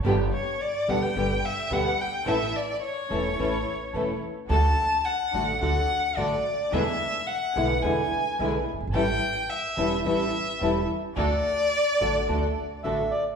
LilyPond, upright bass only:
\new Staff \with { instrumentName = "Upright bass" } { \clef bass \time 4/4 \key d \major \tempo 4 = 108 g,,16. r4 r32 d,16. r32 g,,16. r8 r32 d,16. r8 r32 | a,,16. r4 r32 e,,16. r32 a,,16. r8 r32 e,,16. r8 r32 | d,16. r4 r32 a,,16. r32 d,16. r8 r32 a,,16. r8 r32 | e,16. r4 r32 b,,16. r32 e,16. r8 r32 b,,16. r16 fis,,32 g,,32 gis,,32 |
a,,16. r4 r32 e,,16. r32 a,,16. r8 r32 e,,16. r8 r32 | d,16. r4 r32 a,,16. r32 d,16. r8 r32 a,,16. r8 r32 | }